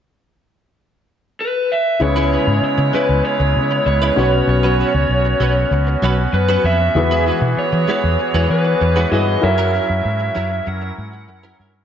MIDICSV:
0, 0, Header, 1, 8, 480
1, 0, Start_track
1, 0, Tempo, 618557
1, 1557, Time_signature, 4, 2, 24, 8
1, 9194, End_track
2, 0, Start_track
2, 0, Title_t, "Lead electric guitar"
2, 0, Program_c, 0, 29
2, 1091, Note_on_c, 0, 71, 86
2, 1331, Note_off_c, 0, 71, 0
2, 1333, Note_on_c, 0, 76, 88
2, 1549, Note_off_c, 0, 76, 0
2, 1573, Note_on_c, 0, 73, 101
2, 2046, Note_off_c, 0, 73, 0
2, 2055, Note_on_c, 0, 73, 85
2, 2282, Note_off_c, 0, 73, 0
2, 2285, Note_on_c, 0, 71, 77
2, 2520, Note_off_c, 0, 71, 0
2, 2523, Note_on_c, 0, 73, 93
2, 2992, Note_off_c, 0, 73, 0
2, 3002, Note_on_c, 0, 73, 84
2, 3478, Note_off_c, 0, 73, 0
2, 3488, Note_on_c, 0, 73, 85
2, 4412, Note_off_c, 0, 73, 0
2, 4920, Note_on_c, 0, 71, 79
2, 5142, Note_off_c, 0, 71, 0
2, 5165, Note_on_c, 0, 76, 103
2, 5610, Note_off_c, 0, 76, 0
2, 5887, Note_on_c, 0, 73, 82
2, 6117, Note_off_c, 0, 73, 0
2, 6127, Note_on_c, 0, 73, 86
2, 6601, Note_off_c, 0, 73, 0
2, 6604, Note_on_c, 0, 71, 75
2, 7050, Note_off_c, 0, 71, 0
2, 7087, Note_on_c, 0, 75, 87
2, 7327, Note_off_c, 0, 75, 0
2, 7330, Note_on_c, 0, 76, 103
2, 8286, Note_off_c, 0, 76, 0
2, 8290, Note_on_c, 0, 78, 93
2, 8973, Note_off_c, 0, 78, 0
2, 9194, End_track
3, 0, Start_track
3, 0, Title_t, "Grand piano"
3, 0, Program_c, 1, 0
3, 1550, Note_on_c, 1, 64, 55
3, 1558, Note_on_c, 1, 68, 52
3, 1559, Note_on_c, 1, 49, 57
3, 1563, Note_on_c, 1, 71, 53
3, 1567, Note_on_c, 1, 73, 62
3, 1685, Control_c, 1, 64, 127
3, 2247, Note_off_c, 1, 49, 0
3, 3203, Note_off_c, 1, 64, 0
3, 3207, Note_off_c, 1, 68, 0
3, 3209, Note_off_c, 1, 71, 0
3, 3211, Note_off_c, 1, 73, 0
3, 3229, Note_on_c, 1, 61, 62
3, 3234, Note_on_c, 1, 66, 53
3, 3237, Note_on_c, 1, 47, 60
3, 3240, Note_on_c, 1, 71, 53
3, 3246, Note_on_c, 1, 73, 70
3, 3249, Control_c, 1, 64, 0
3, 3371, Control_c, 1, 64, 127
3, 3926, Note_off_c, 1, 47, 0
3, 5123, Note_off_c, 1, 61, 0
3, 5125, Note_off_c, 1, 66, 0
3, 5128, Note_off_c, 1, 71, 0
3, 5131, Note_off_c, 1, 73, 0
3, 5393, Note_on_c, 1, 64, 57
3, 5397, Note_on_c, 1, 66, 53
3, 5400, Note_on_c, 1, 52, 59
3, 5403, Note_on_c, 1, 68, 55
3, 5408, Control_c, 1, 64, 0
3, 5409, Note_on_c, 1, 71, 68
3, 5536, Control_c, 1, 64, 127
3, 6088, Note_off_c, 1, 52, 0
3, 7044, Note_off_c, 1, 64, 0
3, 7046, Note_off_c, 1, 66, 0
3, 7049, Note_off_c, 1, 68, 0
3, 7052, Note_off_c, 1, 71, 0
3, 7071, Note_on_c, 1, 64, 43
3, 7074, Note_on_c, 1, 66, 40
3, 7078, Note_on_c, 1, 68, 41
3, 7082, Note_on_c, 1, 71, 51
3, 7292, Note_off_c, 1, 64, 0
3, 7295, Note_off_c, 1, 66, 0
3, 7303, Note_on_c, 1, 64, 56
3, 7307, Note_on_c, 1, 66, 56
3, 7316, Note_on_c, 1, 70, 52
3, 7318, Note_off_c, 1, 68, 0
3, 7320, Note_off_c, 1, 71, 0
3, 7321, Note_on_c, 1, 73, 68
3, 7328, Control_c, 1, 64, 0
3, 7475, Control_c, 1, 64, 127
3, 9194, Note_off_c, 1, 64, 0
3, 9194, Note_off_c, 1, 66, 0
3, 9194, Note_off_c, 1, 70, 0
3, 9194, Note_off_c, 1, 73, 0
3, 9194, End_track
4, 0, Start_track
4, 0, Title_t, "Clean electric guitar"
4, 0, Program_c, 2, 27
4, 1676, Note_on_c, 2, 71, 76
4, 1679, Note_on_c, 2, 64, 70
4, 1686, Note_on_c, 2, 61, 65
4, 1690, Note_on_c, 2, 56, 63
4, 1788, Note_off_c, 2, 56, 0
4, 1793, Note_off_c, 2, 61, 0
4, 1797, Note_on_c, 2, 56, 57
4, 1798, Note_off_c, 2, 64, 0
4, 1801, Note_off_c, 2, 71, 0
4, 1802, Note_on_c, 2, 61, 60
4, 1807, Note_on_c, 2, 64, 59
4, 1810, Note_on_c, 2, 71, 68
4, 1911, Note_off_c, 2, 71, 0
4, 1912, Note_off_c, 2, 56, 0
4, 1914, Note_off_c, 2, 61, 0
4, 1917, Note_off_c, 2, 64, 0
4, 2277, Note_on_c, 2, 56, 72
4, 2284, Note_on_c, 2, 61, 81
4, 2288, Note_on_c, 2, 64, 78
4, 2293, Note_on_c, 2, 71, 76
4, 2390, Note_off_c, 2, 71, 0
4, 2395, Note_off_c, 2, 64, 0
4, 2401, Note_off_c, 2, 61, 0
4, 2423, Note_off_c, 2, 56, 0
4, 3117, Note_on_c, 2, 71, 74
4, 3124, Note_on_c, 2, 64, 71
4, 3127, Note_on_c, 2, 61, 66
4, 3132, Note_on_c, 2, 56, 62
4, 3234, Note_off_c, 2, 61, 0
4, 3236, Note_off_c, 2, 56, 0
4, 3239, Note_on_c, 2, 54, 51
4, 3242, Note_off_c, 2, 71, 0
4, 3244, Note_on_c, 2, 61, 59
4, 3247, Note_off_c, 2, 64, 0
4, 3250, Note_on_c, 2, 66, 64
4, 3251, Note_on_c, 2, 71, 58
4, 3351, Note_off_c, 2, 71, 0
4, 3353, Note_off_c, 2, 54, 0
4, 3355, Note_off_c, 2, 61, 0
4, 3358, Note_off_c, 2, 66, 0
4, 3595, Note_on_c, 2, 71, 69
4, 3602, Note_on_c, 2, 66, 70
4, 3605, Note_on_c, 2, 61, 66
4, 3609, Note_on_c, 2, 54, 62
4, 3706, Note_off_c, 2, 54, 0
4, 3712, Note_off_c, 2, 61, 0
4, 3715, Note_on_c, 2, 54, 58
4, 3716, Note_off_c, 2, 66, 0
4, 3721, Note_off_c, 2, 71, 0
4, 3722, Note_on_c, 2, 61, 65
4, 3726, Note_on_c, 2, 66, 70
4, 3730, Note_on_c, 2, 71, 64
4, 3827, Note_off_c, 2, 71, 0
4, 3831, Note_off_c, 2, 54, 0
4, 3834, Note_off_c, 2, 61, 0
4, 3834, Note_off_c, 2, 66, 0
4, 4193, Note_on_c, 2, 54, 79
4, 4199, Note_on_c, 2, 61, 73
4, 4204, Note_on_c, 2, 66, 78
4, 4208, Note_on_c, 2, 71, 80
4, 4308, Note_off_c, 2, 71, 0
4, 4315, Note_off_c, 2, 66, 0
4, 4319, Note_off_c, 2, 61, 0
4, 4341, Note_off_c, 2, 54, 0
4, 4676, Note_on_c, 2, 54, 80
4, 4681, Note_on_c, 2, 61, 85
4, 4685, Note_on_c, 2, 66, 80
4, 4690, Note_on_c, 2, 71, 94
4, 4788, Note_off_c, 2, 71, 0
4, 4795, Note_off_c, 2, 66, 0
4, 4799, Note_off_c, 2, 61, 0
4, 4823, Note_off_c, 2, 54, 0
4, 5033, Note_on_c, 2, 71, 86
4, 5040, Note_on_c, 2, 66, 77
4, 5044, Note_on_c, 2, 61, 65
4, 5048, Note_on_c, 2, 54, 68
4, 5148, Note_off_c, 2, 54, 0
4, 5153, Note_off_c, 2, 61, 0
4, 5157, Note_off_c, 2, 66, 0
4, 5157, Note_on_c, 2, 54, 52
4, 5161, Note_off_c, 2, 71, 0
4, 5162, Note_on_c, 2, 61, 62
4, 5166, Note_on_c, 2, 66, 63
4, 5171, Note_on_c, 2, 71, 61
4, 5271, Note_off_c, 2, 71, 0
4, 5272, Note_off_c, 2, 54, 0
4, 5274, Note_off_c, 2, 61, 0
4, 5276, Note_off_c, 2, 66, 0
4, 5519, Note_on_c, 2, 71, 83
4, 5525, Note_on_c, 2, 66, 77
4, 5528, Note_on_c, 2, 64, 65
4, 5532, Note_on_c, 2, 56, 61
4, 5625, Note_off_c, 2, 56, 0
4, 5630, Note_off_c, 2, 64, 0
4, 5634, Note_on_c, 2, 56, 53
4, 5635, Note_off_c, 2, 66, 0
4, 5639, Note_on_c, 2, 64, 62
4, 5640, Note_off_c, 2, 71, 0
4, 5644, Note_on_c, 2, 66, 56
4, 5649, Note_on_c, 2, 71, 63
4, 5750, Note_off_c, 2, 56, 0
4, 5751, Note_off_c, 2, 71, 0
4, 5753, Note_off_c, 2, 64, 0
4, 5755, Note_off_c, 2, 66, 0
4, 6114, Note_on_c, 2, 56, 80
4, 6121, Note_on_c, 2, 64, 79
4, 6125, Note_on_c, 2, 66, 96
4, 6130, Note_on_c, 2, 71, 95
4, 6225, Note_off_c, 2, 71, 0
4, 6230, Note_off_c, 2, 66, 0
4, 6235, Note_off_c, 2, 64, 0
4, 6262, Note_off_c, 2, 56, 0
4, 6474, Note_on_c, 2, 71, 77
4, 6478, Note_on_c, 2, 66, 69
4, 6483, Note_on_c, 2, 64, 66
4, 6487, Note_on_c, 2, 56, 58
4, 6586, Note_off_c, 2, 56, 0
4, 6590, Note_off_c, 2, 64, 0
4, 6594, Note_off_c, 2, 66, 0
4, 6597, Note_off_c, 2, 71, 0
4, 6952, Note_on_c, 2, 71, 77
4, 6958, Note_on_c, 2, 66, 74
4, 6963, Note_on_c, 2, 64, 67
4, 6967, Note_on_c, 2, 56, 62
4, 7064, Note_off_c, 2, 56, 0
4, 7071, Note_off_c, 2, 64, 0
4, 7074, Note_on_c, 2, 56, 57
4, 7076, Note_off_c, 2, 66, 0
4, 7078, Note_off_c, 2, 71, 0
4, 7080, Note_on_c, 2, 64, 59
4, 7085, Note_on_c, 2, 66, 60
4, 7088, Note_on_c, 2, 71, 65
4, 7186, Note_off_c, 2, 71, 0
4, 7190, Note_off_c, 2, 56, 0
4, 7193, Note_off_c, 2, 64, 0
4, 7193, Note_off_c, 2, 66, 0
4, 7434, Note_on_c, 2, 70, 75
4, 7439, Note_on_c, 2, 64, 70
4, 7444, Note_on_c, 2, 61, 69
4, 7446, Note_on_c, 2, 54, 65
4, 7540, Note_off_c, 2, 54, 0
4, 7547, Note_off_c, 2, 61, 0
4, 7549, Note_on_c, 2, 54, 52
4, 7551, Note_off_c, 2, 64, 0
4, 7556, Note_off_c, 2, 70, 0
4, 7556, Note_on_c, 2, 61, 53
4, 7560, Note_on_c, 2, 64, 57
4, 7565, Note_on_c, 2, 70, 59
4, 7662, Note_off_c, 2, 70, 0
4, 7668, Note_off_c, 2, 54, 0
4, 7670, Note_off_c, 2, 64, 0
4, 7671, Note_off_c, 2, 61, 0
4, 8030, Note_on_c, 2, 54, 74
4, 8034, Note_on_c, 2, 61, 75
4, 8039, Note_on_c, 2, 64, 72
4, 8042, Note_on_c, 2, 70, 76
4, 8144, Note_off_c, 2, 70, 0
4, 8149, Note_off_c, 2, 64, 0
4, 8153, Note_off_c, 2, 61, 0
4, 8180, Note_off_c, 2, 54, 0
4, 8873, Note_on_c, 2, 70, 84
4, 8876, Note_on_c, 2, 64, 76
4, 8881, Note_on_c, 2, 61, 69
4, 8887, Note_on_c, 2, 54, 65
4, 8986, Note_off_c, 2, 54, 0
4, 8989, Note_off_c, 2, 61, 0
4, 8995, Note_off_c, 2, 64, 0
4, 8995, Note_on_c, 2, 54, 52
4, 8998, Note_on_c, 2, 61, 52
4, 8999, Note_off_c, 2, 70, 0
4, 9005, Note_on_c, 2, 64, 59
4, 9008, Note_on_c, 2, 70, 60
4, 9106, Note_off_c, 2, 70, 0
4, 9111, Note_off_c, 2, 54, 0
4, 9112, Note_off_c, 2, 61, 0
4, 9112, Note_off_c, 2, 64, 0
4, 9194, End_track
5, 0, Start_track
5, 0, Title_t, "Pipe organ"
5, 0, Program_c, 3, 19
5, 1557, Note_on_c, 3, 56, 55
5, 1559, Note_on_c, 3, 64, 68
5, 1560, Note_on_c, 3, 49, 65
5, 1562, Note_on_c, 3, 59, 59
5, 3221, Note_off_c, 3, 56, 0
5, 3222, Note_off_c, 3, 49, 0
5, 3222, Note_off_c, 3, 64, 0
5, 3243, Note_on_c, 3, 61, 60
5, 3245, Note_on_c, 3, 66, 74
5, 5379, Note_off_c, 3, 61, 0
5, 5401, Note_on_c, 3, 52, 64
5, 5402, Note_on_c, 3, 68, 72
5, 7289, Note_off_c, 3, 59, 0
5, 7290, Note_off_c, 3, 66, 0
5, 7300, Note_off_c, 3, 52, 0
5, 7301, Note_off_c, 3, 68, 0
5, 7309, Note_on_c, 3, 70, 73
5, 7310, Note_on_c, 3, 61, 57
5, 7310, Note_on_c, 3, 64, 58
5, 7311, Note_on_c, 3, 54, 63
5, 9194, Note_off_c, 3, 54, 0
5, 9194, Note_off_c, 3, 61, 0
5, 9194, Note_off_c, 3, 64, 0
5, 9194, Note_off_c, 3, 70, 0
5, 9194, End_track
6, 0, Start_track
6, 0, Title_t, "Fingered electric bass"
6, 0, Program_c, 4, 33
6, 1560, Note_on_c, 4, 37, 96
6, 1829, Note_off_c, 4, 37, 0
6, 1920, Note_on_c, 4, 44, 78
6, 2009, Note_off_c, 4, 44, 0
6, 2157, Note_on_c, 4, 49, 95
6, 2247, Note_off_c, 4, 49, 0
6, 2398, Note_on_c, 4, 37, 74
6, 2488, Note_off_c, 4, 37, 0
6, 2637, Note_on_c, 4, 37, 87
6, 2757, Note_on_c, 4, 49, 90
6, 2769, Note_off_c, 4, 37, 0
6, 2937, Note_off_c, 4, 49, 0
6, 2997, Note_on_c, 4, 37, 84
6, 3177, Note_off_c, 4, 37, 0
6, 3238, Note_on_c, 4, 35, 86
6, 3418, Note_off_c, 4, 35, 0
6, 3472, Note_on_c, 4, 35, 92
6, 3744, Note_off_c, 4, 35, 0
6, 3837, Note_on_c, 4, 37, 79
6, 3927, Note_off_c, 4, 37, 0
6, 3953, Note_on_c, 4, 35, 85
6, 4135, Note_off_c, 4, 35, 0
6, 4192, Note_on_c, 4, 35, 76
6, 4374, Note_off_c, 4, 35, 0
6, 4432, Note_on_c, 4, 37, 87
6, 4614, Note_off_c, 4, 37, 0
6, 4673, Note_on_c, 4, 35, 83
6, 4855, Note_off_c, 4, 35, 0
6, 4912, Note_on_c, 4, 42, 82
6, 5094, Note_off_c, 4, 42, 0
6, 5154, Note_on_c, 4, 41, 89
6, 5335, Note_off_c, 4, 41, 0
6, 5393, Note_on_c, 4, 40, 99
6, 5665, Note_off_c, 4, 40, 0
6, 5755, Note_on_c, 4, 47, 90
6, 5846, Note_off_c, 4, 47, 0
6, 5996, Note_on_c, 4, 52, 89
6, 6086, Note_off_c, 4, 52, 0
6, 6238, Note_on_c, 4, 40, 74
6, 6328, Note_off_c, 4, 40, 0
6, 6474, Note_on_c, 4, 40, 85
6, 6565, Note_off_c, 4, 40, 0
6, 6597, Note_on_c, 4, 52, 88
6, 6777, Note_off_c, 4, 52, 0
6, 6838, Note_on_c, 4, 40, 80
6, 7018, Note_off_c, 4, 40, 0
6, 7075, Note_on_c, 4, 43, 79
6, 7256, Note_off_c, 4, 43, 0
6, 7321, Note_on_c, 4, 42, 95
6, 7590, Note_off_c, 4, 42, 0
6, 7680, Note_on_c, 4, 42, 82
6, 7769, Note_off_c, 4, 42, 0
6, 7801, Note_on_c, 4, 44, 87
6, 7980, Note_off_c, 4, 44, 0
6, 8044, Note_on_c, 4, 42, 76
6, 8222, Note_off_c, 4, 42, 0
6, 8280, Note_on_c, 4, 42, 87
6, 8459, Note_off_c, 4, 42, 0
6, 8523, Note_on_c, 4, 44, 77
6, 8762, Note_off_c, 4, 44, 0
6, 8762, Note_on_c, 4, 42, 88
6, 8941, Note_off_c, 4, 42, 0
6, 9000, Note_on_c, 4, 43, 79
6, 9179, Note_off_c, 4, 43, 0
6, 9194, End_track
7, 0, Start_track
7, 0, Title_t, "Muted clean electric guitar strokes"
7, 1554, Note_on_c, 9, 29, 36
7, 1631, Note_off_c, 9, 29, 0
7, 1921, Note_on_c, 9, 29, 37
7, 1998, Note_off_c, 9, 29, 0
7, 2157, Note_on_c, 9, 29, 44
7, 2235, Note_off_c, 9, 29, 0
7, 2400, Note_on_c, 9, 29, 34
7, 2477, Note_off_c, 9, 29, 0
7, 2518, Note_on_c, 9, 29, 36
7, 2596, Note_off_c, 9, 29, 0
7, 2639, Note_on_c, 9, 29, 44
7, 2717, Note_off_c, 9, 29, 0
7, 2879, Note_on_c, 9, 29, 45
7, 2957, Note_off_c, 9, 29, 0
7, 2998, Note_on_c, 9, 29, 38
7, 3075, Note_off_c, 9, 29, 0
7, 3361, Note_on_c, 9, 29, 44
7, 3438, Note_off_c, 9, 29, 0
7, 3477, Note_on_c, 9, 29, 34
7, 3555, Note_off_c, 9, 29, 0
7, 3836, Note_on_c, 9, 29, 44
7, 3914, Note_off_c, 9, 29, 0
7, 4077, Note_on_c, 9, 29, 43
7, 4154, Note_off_c, 9, 29, 0
7, 4318, Note_on_c, 9, 29, 36
7, 4395, Note_off_c, 9, 29, 0
7, 4437, Note_on_c, 9, 29, 40
7, 4515, Note_off_c, 9, 29, 0
7, 4556, Note_on_c, 9, 29, 42
7, 4633, Note_off_c, 9, 29, 0
7, 4798, Note_on_c, 9, 29, 43
7, 4875, Note_off_c, 9, 29, 0
7, 4916, Note_on_c, 9, 29, 47
7, 4994, Note_off_c, 9, 29, 0
7, 5281, Note_on_c, 9, 29, 54
7, 5358, Note_off_c, 9, 29, 0
7, 5403, Note_on_c, 9, 29, 34
7, 5480, Note_off_c, 9, 29, 0
7, 5760, Note_on_c, 9, 29, 37
7, 5838, Note_off_c, 9, 29, 0
7, 5995, Note_on_c, 9, 29, 37
7, 6073, Note_off_c, 9, 29, 0
7, 6234, Note_on_c, 9, 29, 43
7, 6312, Note_off_c, 9, 29, 0
7, 6353, Note_on_c, 9, 29, 41
7, 6431, Note_off_c, 9, 29, 0
7, 6595, Note_on_c, 9, 29, 39
7, 6673, Note_off_c, 9, 29, 0
7, 6710, Note_on_c, 9, 29, 44
7, 6788, Note_off_c, 9, 29, 0
7, 6835, Note_on_c, 9, 29, 42
7, 6913, Note_off_c, 9, 29, 0
7, 7195, Note_on_c, 9, 29, 45
7, 7273, Note_off_c, 9, 29, 0
7, 7315, Note_on_c, 9, 29, 42
7, 7393, Note_off_c, 9, 29, 0
7, 7671, Note_on_c, 9, 29, 50
7, 7749, Note_off_c, 9, 29, 0
7, 7914, Note_on_c, 9, 29, 42
7, 7991, Note_off_c, 9, 29, 0
7, 8154, Note_on_c, 9, 29, 41
7, 8231, Note_off_c, 9, 29, 0
7, 8272, Note_on_c, 9, 29, 43
7, 8349, Note_off_c, 9, 29, 0
7, 8394, Note_on_c, 9, 29, 49
7, 8472, Note_off_c, 9, 29, 0
7, 8640, Note_on_c, 9, 29, 38
7, 8718, Note_off_c, 9, 29, 0
7, 8752, Note_on_c, 9, 29, 37
7, 8830, Note_off_c, 9, 29, 0
7, 9116, Note_on_c, 9, 29, 43
7, 9193, Note_off_c, 9, 29, 0
7, 9194, End_track
8, 0, Start_track
8, 0, Title_t, "Muted fingered electric bass strokes"
8, 2037, Note_on_c, 9, 29, 43
8, 2114, Note_off_c, 9, 29, 0
8, 5878, Note_on_c, 9, 29, 40
8, 5955, Note_off_c, 9, 29, 0
8, 9194, End_track
0, 0, End_of_file